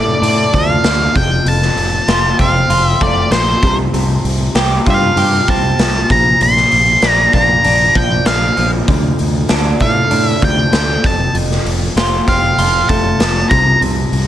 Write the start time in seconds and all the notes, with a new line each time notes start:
Already playing: A2 D3 A3 D4 D5
0.22 A2 D4, open hi-hat
0.52 D2 F3 F5, kick, open hi-hat
0.83 D2 D3, snare, open hi-hat
1.15 F1 F2 G5, kick, open hi-hat
1.45 F1 F2 A5, open hi-hat
1.62 snare
1.76 F1, open hi-hat
2.08 F1 F4, snare, open hi-hat
2.39 F1 C4 F5, kick, open hi-hat
2.70 F1 F4, open hi-hat
2.86 E5
3.01 F1 A3 D5, kick, open hi-hat
3.31 A#1 F3 C5, snare, open hi-hat
3.62 C2 C3, kick, open hi-hat
3.93 C2 C3, open hi-hat
4.24 C2, open hi-hat
4.55 C2 G4, snare, open hi-hat
4.86 G2 F4, kick, open hi-hat
4.90 F5
5.16 G2 G4, open hi-hat
5.48 C2 C4 A5, kick, open hi-hat
5.79 C2 F3, snare, open hi-hat
6.10 A#1 A#2 A#5, kick, open hi-hat
6.41 A#1 A#2 C6, open hi-hat
6.57 snare
6.72 A#1, open hi-hat
7.02 A#1 D4, snare, open hi-hat
7.10 A#5
7.33 A#1 A#3 A#5, kick, open hi-hat
7.64 A#1 D4, open hi-hat
7.95 A#1 F3 G5, kick, open hi-hat
8.26 A#1 D3 F5, snare, open hi-hat
8.57 A#1 F3, open hi-hat
8.88 D2 D3, kick, open hi-hat
9.19 D2, open hi-hat
9.49 D2 D4, snare, open hi-hat
9.80 A2 A3 F5, kick, open hi-hat
10.11 A2 D4, open hi-hat
10.27 E5
10.41 D2 F3 G5, kick, open hi-hat
10.72 D2 D3, snare, open hi-hat
11.04 F1 F2 A5, kick, open hi-hat
11.34 F1 F2, open hi-hat
11.51 snare
11.65 F1, open hi-hat
11.96 F1 F4, snare, open hi-hat
12.27 F1 C4 F5, kick, open hi-hat
12.58 F1 F4, open hi-hat
12.89 F1 A3 A5, kick, open hi-hat
13.20 F1 F3, snare, open hi-hat
13.49 C2 C3 A#5, kick, open hi-hat
13.81 C2 C3, open hi-hat
14.12 C2, open hi-hat